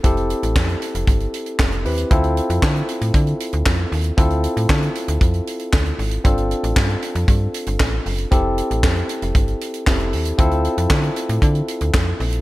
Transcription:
<<
  \new Staff \with { instrumentName = "Tine electric piano" } { \time 4/4 \key d \minor \tempo 4 = 116 <c' e' g' a'>2.~ <c' e' g' a'>8 <c' e' g' b'>8 | <c' e' f' a'>1 | <c' e' f' a'>1 | <c' d' f' a'>1 |
<c' e' g' a'>2. <c' e' g' a'>4 | <c' e' f' a'>1 | }
  \new Staff \with { instrumentName = "FM bass" } { \clef bass \time 4/4 \key d \minor f,,8. a,,16 f,8 r16 f,,16 g,,8 r8 f,,8 ees,8 | d,8. f,16 d8 r16 a,16 d8 r16 d,16 f,8 ees,8 | d,8. a,16 d8 r16 d,16 f,8 r8 d,8 gis,,8 | g,,8. a,,16 g,8 r16 f,16 g,8 r16 g,,16 a,,8 fis,,8 |
f,,8. a,,16 f,8 r16 f,,16 g,,8 r8 f,,8 ees,8 | d,8. f,16 d8 r16 a,16 d8 r16 d,16 f,8 bes,,8 | }
  \new DrumStaff \with { instrumentName = "Drums" } \drummode { \time 4/4 <hh bd>16 hh16 hh16 hh16 <hc bd sn>16 hh16 hh16 hh16 <hh bd>16 hh16 hh16 hh16 <hc bd sn>16 hh16 hho16 hh16 | <hh bd>16 hh16 hh16 hh16 <hc bd sn>16 hh16 hh16 hh16 <hh bd>16 hh16 hh16 hh16 <hc bd sn>8 hho16 hh16 | <hh bd>16 hh16 hh16 hh16 <hc bd sn>16 hh16 hh16 hh16 <hh bd>16 hh16 hh16 hh16 <hc bd sn>16 hh16 hho16 hh16 | <hh bd>16 hh16 hh16 hh16 <hc bd sn>16 hh16 hh16 hh16 <hh bd>8 hh16 hh16 <hc bd sn>8 hho16 hh16 |
<hh bd>8 hh16 hh16 <hc bd sn>16 hh16 hh16 hh16 <hh bd>16 hh16 hh16 hh16 <hc bd sn>16 hh16 hho16 hh16 | <hh bd>16 hh16 hh16 hh16 <hc bd sn>16 hh16 hh16 hh16 <hh bd>16 hh16 hh16 hh16 <hc bd sn>8 hho16 hh16 | }
>>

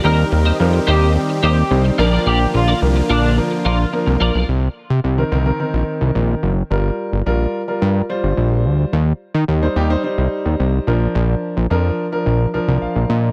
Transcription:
<<
  \new Staff \with { instrumentName = "Clean electric guitar" } { \time 4/4 \key c \minor \tempo 4 = 108 <g' c'' ees''>16 r8 <g' c'' ees''>16 r8 <g' c'' ees''>16 <g' c'' ees''>16 r8 <g' c'' ees''>16 r8. <f' bes' d''>16 <f' bes' d''>16 | <f' bes' d''>16 r8 <f' bes' d''>16 r8 <f' bes' d''>16 <f' bes' d''>16 r8 <f' bes' d''>16 r8. <f' bes' d''>16 <f' bes' d''>16 | r1 | r1 |
r1 | r1 | }
  \new Staff \with { instrumentName = "Horn section" } { \time 4/4 \key c \minor bes'8 bes'8 r8 g'8 r8 g'8. r8. | g'8 f'8 r8 d'8 r8 f'8 r4 | r1 | r1 |
r1 | r1 | }
  \new Staff \with { instrumentName = "Grand piano" } { \time 4/4 \key c \minor << { r1 | r1 | r1 | r1 |
r1 | r2. f''8 ees''8 | } \\ { <g c' ees' bes'>8. r16 <g c' ees' bes'>8. r16 <g c' ees' g'>8. r16 <g c' ees' c''>8 <f bes d' bes'>8~ | <f bes d' bes'>8. r16 <f bes d' bes'>8. r16 <f bes d' bes'>8. r16 <f bes d' bes'>8. r16 | r4 r16 <ees c' bes'>16 <ees c' bes'>16 <ees c' bes'>16 <ees c' bes'>4. r8 | <g f' bes'>8. r16 <g f' bes'>8 r16 <g f' bes'>8 r16 <g f' c''>4. |
r4 r16 <g ees' c''>16 <g ees' g'>16 <g ees' c''>16 <g ees' c''>4. <f d' bes'>8~ | <f d' bes'>8. r16 <f d' bes'>8 r16 <f d' bes'>8 r16 <f d' bes'>4. | } >> }
  \new Staff \with { instrumentName = "Supersaw synth" } { \time 4/4 \key c \minor <ees c' g'>2.~ <ees c' g'>8 <d bes f'>8~ | <d bes f'>1 | r1 | r1 |
r1 | r1 | }
  \new Staff \with { instrumentName = "Analog synth bass" } { \clef bass \time 4/4 \key c \minor ees,8 ees,8 f,8 ees,8. r16 ees,8 c,8 bes,,8 | bes,,8 bes,,8 c,8 bes,,8. r16 bes,,8 r16 c,16 bes,,16 b,,16 | c,8 r16 c16 c,8 c,8 r16 bes,,16 r16 c,16 bes,,8 fis,,8 | g,,8 r16 g,,16 bes,,8 r8 g,8 r16 g,,16 bes,,8 d,8 |
ees,8 r16 ees16 ees,8 ees,8 r16 c,16 r16 ees,16 c,8 bes,,8 | bes,,8 r16 bes,,16 f,8 r8 bes,,8 c,16 c,16 bes,,16 bes,,16 bes,8 | }
>>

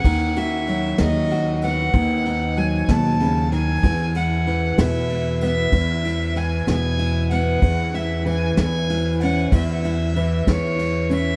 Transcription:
<<
  \new Staff \with { instrumentName = "Fiddle" } { \time 6/8 \key e \major \tempo 4. = 63 fis''8 e''4 dis''4 fis''8~ | fis''4 gis''8 a''4 gis''8~ | gis''8 fis''4 e''4 e''8~ | e''4 gis''8 gis''4 fis''8~ |
fis''8 e''8 gis''8 gis''4 fis''8 | e''4. cis''4 e''8 | }
  \new Staff \with { instrumentName = "Steel-string acoustic guitar" } { \clef bass \time 6/8 \key e \major << { r8 fis'4. fis'8 b8 | r8 dis'2~ dis'8 | r8 e'4. e'8 b8 | r8 e'4. e'8 b8 |
r8 e'4. e'8 cis'8 | r8 e'4. e'8 cis'8 | } \\ { dis4 fis8 dis4. | dis4 fis8 b,8 cis8 dis8 | e,4 e8 b,4. | e,4 e8 b,4. |
e,4 e8 e,4. | e,4 e8 e,4. | } >> }
  \new Staff \with { instrumentName = "Upright bass" } { \clef bass \time 6/8 \key e \major dis,4. dis,4. | dis,4. dis,4. | e,4. e,4. | e,4. e,4. |
e,4. e,4. | e,4. e,4. | }
  \new DrumStaff \with { instrumentName = "Drums" } \drummode { \time 6/8 <bd cymr>8 cymr8 cymr8 <cymr sn>8 cymr8 cymr8 | <bd cymr>8 cymr8 cymr8 <bd cymr sn>8 cymr8 cymr8 | <bd cymr>8 cymr8 cymr8 <cymr sn>8 cymr8 cymr8 | <bd cymr>8 cymr8 cymr8 <cymr sn>8 cymr8 cymr8 |
<bd cymr>8 cymr8 cymr8 <cymr sn>8 cymr8 cymr8 | <bd cymr>8 cymr8 cymr8 <bd cymr sn>8 cymr8 cymr8 | }
>>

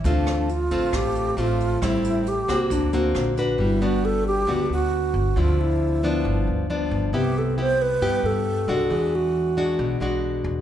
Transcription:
<<
  \new Staff \with { instrumentName = "Alto flute" } { \time 4/4 \key g \dorian \tempo 4 = 135 d'4 f'4 g'4 f'4 | e'4 g'4 d'4. r8 | e'8 fis'8 a'8 g'4 fis'4. | f'8 e'2 r4. |
g'8 a'8 c''8 b'4 a'4. | gis'8 fis'2 r4. | }
  \new Staff \with { instrumentName = "Nylon-string guitar" } { \time 4/4 \key g \dorian << { <a c' f'>4 r8 <a c' f'>4. <a c' f'>4 | <g c' e'>4 r8 <bes c' fis'>4 <ais c' fis'>4 <d' fis' b'>8~ | <d' fis' b'>8 <b d' fis'>4. <b d' fis'>2 | <f c' e'>4. <f b d'>4. <f b d'>4 |
<b e' g'>4 <b e' g'>8 r8 <b e' g'>4. <gis d' fis'>8~ | <gis d' fis'>4. <gis d' fis'>4 <gis d' fis'>4. | } \\ { d2 a,2 | a,2 d2 | g2 d2 | d2 g,2 |
c2 g,2 | e2 b,2 | } >> }
  \new Staff \with { instrumentName = "Upright bass" } { \clef bass \time 4/4 \key g \dorian d,4. a,,8 a,,4 a,,4 | a,,4. c,8 d,4 ais,,4 | g,,2 d,8 d,4 g,,8 | d,2 g,,8 d,4 g,,8 |
c,2 g,8 g,4 c,8 | e,2 b,,8 b,,4 e,8 | }
  \new DrumStaff \with { instrumentName = "Drums" } \drummode { \time 4/4 <hh bd>8 <hh ss>8 hh8 <hh bd>8 <hh bd ss>8 hh8 hh8 <hh bd>8 | <hh bd ss>8 hh8 hh8 <hh bd ss>8 <hh bd>8 hh8 <hh ss>8 <hh bd>8 | r4 r4 r4 r4 | r4 r4 r4 r4 |
r4 r4 r4 r4 | r4 r4 r4 r4 | }
>>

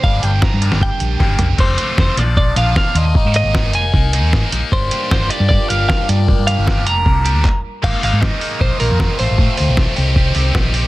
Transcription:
<<
  \new Staff \with { instrumentName = "Clean electric guitar" } { \time 4/4 \key g \phrygian \tempo 4 = 154 f''8 g''8 bes''4 g''2 | c''4 c''8 d''8 d''8 f''8 f''8 ees''8~ | ees''8 ees''4 aes''2 r8 | c''4 c''8 d''8 d''8 f''8 f''8 d''8~ |
d''8 f''4 bes''2 r8 | f''8 f''8 ees''4 c''8 bes'4 c''8~ | c''2.~ c''8 r8 | }
  \new Staff \with { instrumentName = "Analog synth pad" } { \time 4/4 \key g \phrygian <d' g' bes' g''>1 | r1 | r1 | <g d' f' bes'>1~ |
<g d' f' bes'>2. r4 | <bes' ees'' bes''>2.~ <bes' ees'' bes''>8 r8 | r4. bes'2~ bes'8 | }
  \new Staff \with { instrumentName = "Overdriven electric guitar" } { \time 4/4 \key g \phrygian <g bes d'>8 r4 <g bes d'>8 r4 <g bes d'>8 r8 | <a c' f'>4 <a c' f'>8 <f bes d' f'>8 <f bes d' f'>8 <bes d' f'>4 <bes d' f'>8 | <ees bes ees'>4 <ees bes ees'>8 <bes ees'>8 <ees bes ees'>8 <bes ees'>4 <bes ees'>8 | <bes d' g'>4 <bes d' g'>8 <d' g'>8 <bes d' g'>8 <d' g'>4 <d' g'>8 |
<bes d' g'>4 <bes d' g'>8 <d' g'>8 <bes d' g'>8 <d' g'>8 r4 | <ees bes ees'>8 <ees bes ees'>8 <ees bes ees'>8 <ees bes ees'>8 <ees bes ees' f'>8 <ees bes ees' f'>8 <ees bes ees' f'>8 <a c' f'>8 | <a c' f'>8 <a c' f'>8 <a c' f'>8 <c' ees' g'>8 <c' ees' g'>8 <c' ees' g'>8 <c' ees' g'>8 <c' ees' g'>8 | }
  \new Staff \with { instrumentName = "Distorted electric guitar" } { \time 4/4 \key g \phrygian <g, d g bes d'>1 | r8 <f a c' f'>8 <f a c' f'>8 r4 <f bes d' f'>8 <f bes d' f'>8 r8 | r8 <aes bes ees' aes'>8 <aes bes ees' aes'>8 r4 <aes bes ees' aes'>8 <aes bes ees' aes'>8 r8 | r8 <g bes d' g'>8 <g bes d' g'>8 r4 <g bes d' g'>8 <g bes d' g'>8 r8 |
r8 <g bes d' g'>8 <g bes d' g'>8 r4 <g bes d' g'>8 r4 | <aes bes ees' aes'>8 <aes bes ees' aes'>8 <aes bes ees' aes'>8 <aes bes ees' aes'>8 <bes, ees bes ees' f'>8 <bes, ees bes ees' f'>8 <bes, ees bes ees' f'>8 <a, f a c' f'>8 | <a, f a c' f'>8 <a, f a c' f'>8 <a, f a c' f'>8 <c ees g c' g'>8 <c ees g c' g'>8 <c ees g c' g'>8 <c ees g c' g'>8 <c ees g c' g'>8 | }
  \new Staff \with { instrumentName = "Fingered electric bass" } { \clef bass \time 4/4 \key g \phrygian g,,8 g,,8. g,8 g,,8 r16 bes,,8 g,,8 f,,8 | f,,8 r8 f,,16 r16 bes,,4 bes,,8 r8 ees,8 | aes,,16 aes,8 aes,,8. f,,8 c,8. ees,16 aes,16 r16 bes,,16 r16 | g,,8 r8 g,,8 r16 g,8 r16 g,,8 r8 g,8~ |
g,16 g,8 g,,8. f,,8 c,8. d,16 r4 | aes,,16 r16 aes,,16 aes,8 r8. bes,,16 r16 bes,,16 f,8 r16 a,,16 a,,16 | a,16 r16 d,16 b,,8 r16 c,4 c,8 bes,,4 | }
  \new DrumStaff \with { instrumentName = "Drums" } \drummode { \time 4/4 bd8 hh8 <bd sn>8 hh16 sn16 bd8 hh8 <bd sn>8 <hh tomfh>8 | <cymc bd>8 hh8 <bd sn>8 <hh sn>8 bd8 hh8 <bd sn>8 hh8 | bd8 hh8 <bd sn>8 hh8 bd8 hh8 <bd sn>8 hh8 | bd8 hh8 <bd sn>8 hh8 bd8 hh8 <bd sn>8 hh8 |
bd8 hh8 <bd sn>8 hh8 bd8 hh8 <hc bd>4 | <cymc bd>8 hho8 <bd sn>8 hho8 bd8 hho8 <bd sn>8 hho8 | bd8 hho8 <bd sn>8 hho8 bd8 hho8 <bd sn>8 hho8 | }
>>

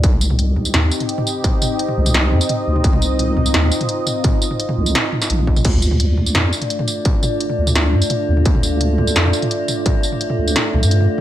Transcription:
<<
  \new Staff \with { instrumentName = "Analog synth pad" } { \time 4/4 \key d \phrygian \tempo 4 = 171 << { <c' ees' ees''>1~ | <c' ees' ees''>1~ | <c' ees' ees''>1~ | <c' ees' ees''>1 |
<a d' d''>1~ | <a d' d''>1~ | <a d' d''>1~ | <a d' d''>1 | } \\ { g'1~ | g'1 | f'1~ | f'1~ |
f'1~ | f'1~ | f'1~ | f'1 | } >> }
  \new Staff \with { instrumentName = "Synth drone" } { \time 4/4 \key d \phrygian r1 | r1 | r1 | r1 |
a1~ | a1~ | a1~ | a1 | }
  \new Staff \with { instrumentName = "Wobble bass" } { \clef bass \time 4/4 \key d \phrygian c,4. c,8 ees,8 r4. | r4. c,4 f,16 r8. d,8 | c,4. c,8 ees,8 r4. | r4. c,8 r4 bes,,4 |
d,4. d,8 f,8 r4. | r4. d,4 g,16 r8. ees,8 | d,4. d,8 f,8 r4. | r4. d,8 r8 c,16 g,8. r8 | }
  \new DrumStaff \with { instrumentName = "Drums" } \drummode { \time 4/4 <hh bd>16 toml16 tamb16 toml16 hh8 toml16 tamb16 <hh sn toml>8 tamb16 <hh toml>16 hh16 toml16 tamb8 | <hh bd toml>8 <tamb toml>8 hh16 toml8 <tamb toml>16 <hh sn>8 toml16 <hh tamb>16 <hh toml>8. toml16 | <hh bd>16 toml16 tamb8 <hh toml>8 toml16 tamb16 <hh sn>16 toml16 tamb16 <hh toml>16 hh8 <tamb toml>8 | <hh bd toml>8 tamb16 toml16 hh16 toml8 tamb16 <hh sn toml>8 toml16 <hh sn tamb>16 hh16 toml16 bd16 <tamb toml>16 |
<cymc hh bd>16 toml16 tamb16 toml16 hh8 toml16 tamb16 <hh sn toml>8 tamb16 <hh toml>16 hh16 toml16 tamb8 | <hh bd toml>8 <tamb toml>8 hh16 toml8 <tamb toml>16 <hh sn>8 toml16 <hh tamb>16 <hh toml>8. toml16 | <hh bd>16 toml16 tamb8 <hh toml>8 toml16 tamb16 <hh sn>16 toml16 tamb16 <hh toml>16 hh8 <tamb toml>8 | <hh bd toml>8 tamb16 toml16 hh16 toml8 tamb16 <hh sn toml>8 toml16 <hh tamb>16 hh16 toml8. | }
>>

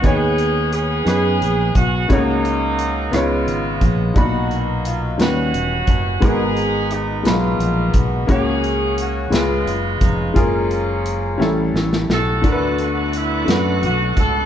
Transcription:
<<
  \new Staff \with { instrumentName = "Saxophone section" } { \time 6/8 \key fis \major \tempo 4. = 58 << { gis'4 gis'4. fis'8 | dis'4. eis'4 gis'8 | fis'8 r8 eis'8 fis'4. | gis'4 dis'8 eis'4 fis'8 |
gis'4 fis'8 eis'8 r8 dis'8 | cis'2 r8 a'8~ | a'8 fis'8 e'8 fis'8 fis'8 a'8 | } \\ { <b cis'>4 <b cis'>4. r8 | <fis ais>4. <gis b>4. | <ais dis'>4. <b cis'>4. | <b dis'>4. <ais b>4. |
cis'4. <gis b>4. | <eis ais>2 r8 fis'8~ | fis'4 r2 | } >> }
  \new Staff \with { instrumentName = "Upright piano" } { \time 6/8 \key fis \major <b dis' gis' cis''>4 r8 <b dis' gis' b'>4 r8 | <a ais cis' fis' cis''>4 r8 <b dis' eis' cis''>4 r8 | <ais, d' dis' fis' b''>4 r8 <g cis' dis' b'>4 r8 | <gis b fis' ais'>4 r8 <b, fis gis b''>4 r8 |
<ais cis' fis' cis''>4 r8 <gis cis' eis' b'>4 r8 | <gis eis' gis' ais'>4 r8 <g cis' e' a'>4 r8 | <a d' fis' ais' b'>4 r8 <a d' fis' b'>4 r8 | }
  \new Staff \with { instrumentName = "Upright piano" } { \clef bass \time 6/8 \key fis \major dis4. r4. | cis4. cis4. | b,4. dis4. | gis,4. r4. |
cis4. cis4. | r4. a,4. | d4. r4. | }
  \new Staff \with { instrumentName = "Tonewheel organ" } { \time 6/8 \key fis \major r2. | r2. | r2. | r2. |
r2. | r2. | <a b d' fis'>2. | }
  \new Staff \with { instrumentName = "Fingered electric bass" } { \clef bass \time 6/8 \key fis \major dis,4. fis,8 ais,,8 b,,8 | cis,4. cis,8 gis,,8 ais,,8 | b,,4. dis,8 e,,8 fis,,8 | gis,,4. b,,8 ais,,8 b,,8 |
cis,4. cis,8 fis,,8 eis,,8 | fis,,4. a,,8 a,,8 b,,8 | d,4. fis,8 b,,8 cis,8 | }
  \new DrumStaff \with { instrumentName = "Drums" } \drummode { \time 6/8 <hh bd>8 hh8 hh8 <hh ss>8 hh8 <hh bd>8 | <hh bd>8 hh8 hh8 <hh ss>8 hh8 <hh bd>8 | <hh bd>8 hh8 hh8 <hh sn>8 hh8 <hh bd>8 | <hh bd>8 hh8 hh8 <hh sn>8 hh8 <hh bd>8 |
<hh bd>8 hh8 hh8 <hh sn>8 hh8 <hh bd>8 | <hh bd>8 hh8 hh8 sn8 sn16 sn16 sn8 | <hh bd>8 hh8 hh8 <hh sn>8 hh8 <hh bd>8 | }
>>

